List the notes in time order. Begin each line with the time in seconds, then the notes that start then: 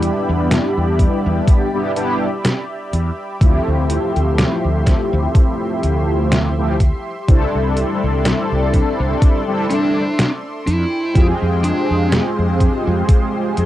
Already playing: G3 B3 D4 E4 G4 D5 E5 B5
0.03 closed hi-hat
0.29 E2
0.51 snare, closed hi-hat
0.77 E2
0.99 kick, closed hi-hat
1.26 E2
1.48 kick, closed hi-hat
1.73 G3 B3 D4 E4 G4
1.95 G3 B3 D4 E4 G4, closed hi-hat
2.45 snare, closed hi-hat
2.93 E2, closed hi-hat
3.40 D2 F3 A3 C4 E4 G4 C6, kick, closed hi-hat
3.68 D2
3.90 closed hi-hat
4.16 D2, closed hi-hat
4.38 snare, closed hi-hat
4.64 D2
4.86 kick, snare, closed hi-hat
5.13 D2
5.35 kick, closed hi-hat
5.83 D2, closed hi-hat
6.32 snare, closed hi-hat
6.57 F3 A3 C4 E4 G4
6.80 kick, closed hi-hat
7.27 C2 G3 C4 D4 E4 A4 D5, kick, closed hi-hat
7.55 C2
7.77 closed hi-hat
8.03 C2
8.25 snare, closed hi-hat
8.52 C2
8.74 kick, closed hi-hat
9.00 C2
9.22 kick, closed hi-hat
9.47 G3 C4 D4 E4 A4
9.70 G3 C4 D4 E4 A4, closed hi-hat
10.19 snare, closed hi-hat
10.67 F2 G#3 E4 C5 G5, closed hi-hat
11.14 F2 G#3 C4 F4 G4 G#4, kick, closed hi-hat
11.42 F2
11.64 D4, closed hi-hat
11.90 F2
12.12 snare, closed hi-hat
12.39 F2
12.60 kick, closed hi-hat
12.87 F2
13.09 kick, closed hi-hat
13.57 F2, closed hi-hat